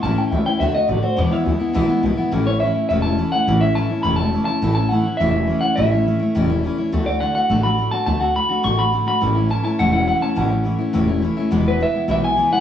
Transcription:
0.03 A1 A2 E3 A3 C#4 E4 A5
0.17 A3 C#4 E4 G5, muted upright bass stroke
0.31 C#2 E3 A3 C#4 E4 E5
0.46 A3 C#4 E4 G5, muted upright bass stroke
0.60 D2 D3 A3 D4 F#4 E5
0.74 A3 D4 F#4 D#5, muted upright bass stroke
0.88 A1 D3 A3 D4 F#4 D5
1.02 A3 D4 F#4 C5, muted upright bass stroke
1.16 E2 B2 E3 G#3 B3 E4 D5
1.31 E3 G#3 B3 E4 E5, muted upright bass stroke
1.45 D2 E3 G#3 B3 E4
1.59 E3 G#3 B3 E4, muted upright bass stroke
1.73 C#2 E2 B2 E3 G#3 B3 E4
1.88 E3 G#3 B3 E4, muted upright bass stroke
2.03 B1 E3 G#3 B3 E4
2.17 E3 G#3 B3 E4, muted upright bass stroke
2.31 A1 A2 E3 A3 C#4 E4
2.46 A3 C#4 E4 C#5
2.60 E3 A3 C#4 E4 E5
2.74 A3 C#4 E4, muted upright bass stroke
2.89 E1 A2 E3 A3 C#4 E4 E5
3.02 C#4 E4 A5
3.07 A3
3.18 E3 A3 C#4 E4
3.32 A3 C#4 E4 F#5, muted upright bass stroke
3.47 A1 A2 E3 A3 C#4 E4
3.61 A3 C#4 E4 E5
3.75 E3 A3 C#4 E4 A5
3.89 A3 C#4 E4, muted upright bass stroke
4.03 E1 A2 E3 A3 C#4 E4 B5
4.16 E4 A5
4.20 A3 C#4
4.33 E3 A3 C#4 E4
4.45 C#4 E4 A5
4.50 A3
4.62 A1 A2 E3 A3 C#4 E4
4.75 C#4 E4 A5
4.79 A3
4.89 E3 A3 C#4 F#5
4.94 E4
5.05 A3 C#4 E4
5.17 E1 A2 E3 A3 E5
5.21 C#4 E4
5.31 C#4 E4 E5
5.36 A3
5.47 E3 A3 C#4 E4
5.61 C#4 E4 F#5
5.65 A3
5.76 A1 A2 E3 A3 C#4 E4 E5
5.91 A3 C#4 E4
6.06 E3 A3 C#4 E4
6.20 A3 C#4 E4, muted upright bass stroke
6.35 E1 A2 E3 A3 C#4 E4
6.44 D5
6.50 A3 C#4 E4
6.63 E3 A3 C#4 E4
6.78 A3 C#4 E4, muted upright bass stroke
6.92 D2 D3 A3 D4 F#4
7.06 A3 D4 F#4 D5
7.20 D3 A3 D4 F#4 F#5
7.35 A3 D4 F#4 F#5
7.50 A1 D3 A3 D4 F#4
7.63 A3 D4 F#4 B5
7.78 D3 A3 D4 F#4
7.91 A3 D4 F#4 A5, muted upright bass stroke
8.06 D2 D3 A3 D4 F#4 A5
8.20 A3 D4 F#4 F#5
8.35 D3 A3 D4 F#4 B5
8.49 A3 D4 F#4, muted upright bass stroke
8.63 A1 D3 A3 D4 F#4 C#6
8.77 A3 D4 F#4 B5
8.92 D3 A3 D4 F#4
9.07 A3 D4 F#4 B5, muted upright bass stroke
9.21 A1 A2 E3 A3 C#4 E4
9.35 A3 C#4 E4
9.49 E3 A3 C#4 E4 A5
9.63 A3 C#4 E4 A5, muted upright bass stroke
9.79 E1 A2 E3 A3 C#4 E4 F#5
9.92 A3 C#4 E4 F#5
10.06 E3 A3 C#4 E4 F#5
10.21 A3 C#4 E4 A5, muted upright bass stroke
10.35 A1 A2 E3 A3 C#4 E4 F#5
10.49 A3 C#4 E4
10.64 E3 A3 C#4 E4
10.79 A3 C#4 E4, muted upright bass stroke
10.93 E1 A2 E3 A3 C#4 E4
11.08 A3 C#4 E4
11.22 E3 A3 C#4 E4
11.37 A3 C#4 E4
11.51 E1 E2 B2 E3 G#3 B3 E4
11.66 E3 G#3 B3 E4 B4
11.80 E3 G#3 B3 E4 E5
11.94 E3 G#3 B3 E4, muted upright bass stroke
12.08 B1 E2 B2 E3 G#3 B3 E4 E5
12.22 E3 G#3 B3 E4 G#5
12.36 E3 G#3 B3 E4
12.51 E3 G#3 B3 E4 F#5, muted upright bass stroke

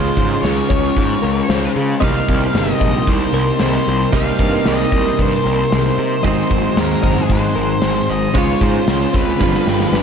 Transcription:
Already playing: C#3 G#3 C#4 F4 G#4 C5 F5 C6
0.17 G#2, kick
0.42 C#2 C#5, snare, open hi-hat
0.69 C#2 C#5, kick
0.97 G#2, kick, open hi-hat
1.22 C#2 A#4
1.48 C#2 C5, snare, open hi-hat
1.76 C#3
2.00 C2 C3 G3 A#3 D#4 A#4 D#5 F5 G5, kick, open hi-hat
2.04 C4 D#4
2.29 C2, kick
2.54 G1 D#5, snare, open hi-hat
2.80 A#1 D#5, kick
3.07 C2 C5, kick, open hi-hat
3.33 C2 A#4
3.59 C2 C5, snare, open hi-hat
3.88 C2
4.13 C2 C3 G3 A#3 C4 D#5 F5, kick, open hi-hat
4.17 D#4
4.39 G2, kick
4.65 C2 D#5, snare, open hi-hat
4.92 C2 D#5, kick
5.19 G2 C5, kick, open hi-hat
5.44 C2 A#4
5.70 C2 C5, snare, open hi-hat
5.98 C3
6.23 G#1 G#2 D#3 F#3 G#3 G#4 C5 D#5 F#5, kick, open hi-hat
6.27 C4 D#4
6.51 G#1, kick
6.77 D#2 A#4, snare, open hi-hat
7.03 F#1 D#5, kick
7.18 G#4
7.30 G#1 C5, kick, open hi-hat
7.56 G#1 A#4
7.82 G#1 C5, snare, open hi-hat
8.09 G#1 D#5
8.34 C#2 C#3 G#3 C#4 C5 F5, kick, open hi-hat
8.38 F4 C#5
8.61 G#2 C5, kick
8.88 C#2, snare, open hi-hat
9.13 C#2 C4 B4, kick
9.39 G1 G2 D3 F3 D4 G4 B5, kick, snare
9.43 G3 B3 F4
9.54 snare
9.67 G1 G4, snare
9.80 snare
9.92 G1 B4, snare

